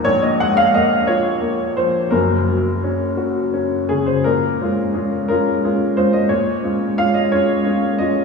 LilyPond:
\new Staff \with { instrumentName = "Upright piano" } { \time 6/8 \key bes \minor \tempo 4. = 59 << { des''16 ees''16 ges''16 f''16 ees''8 des''4 c''8 | bes'2~ bes'8 aes'16 c''16 | bes'4. bes'4 c''16 ees''16 | des''4 f''16 ees''16 des''4 ees''8 | } \\ { <bes,, bes,>8 aes8 bes8 f'8 bes8 f8 | <ges,, ges,>8 ges8 des'8 ges'8 des'8 des8 | bes,8 <aes des' f'>8 <aes des' f'>8 <aes des' f'>8 <aes des' f'>8 <aes des' f'>8 | bes,8 <aes des' f'>8 <aes des' f'>8 <aes des' f'>8 <aes des' f'>8 <aes des' f'>8 | } >> }